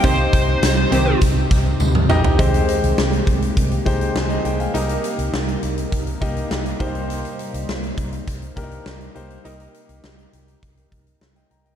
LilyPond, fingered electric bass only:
\new Staff \with { instrumentName = "Fingered electric bass" } { \clef bass \time 4/4 \key c \minor \tempo 4 = 102 c,8 c,8 c,8 c,8 c,8 c,8 d,8 bes,,8 | c,8 r16 c,16 c,8 c,8 c,8 c,8 c,8 c,8 | c,8 r16 c,16 c,8 c,8 c,8 c,8 c,8 c,8~ | c,8 r16 c,16 c,8 c,8 c,8 c,8 c,8 c,8 |
c,8 r16 c,16 c,8 c,8 c,8 c,8 c,8 c,8 | }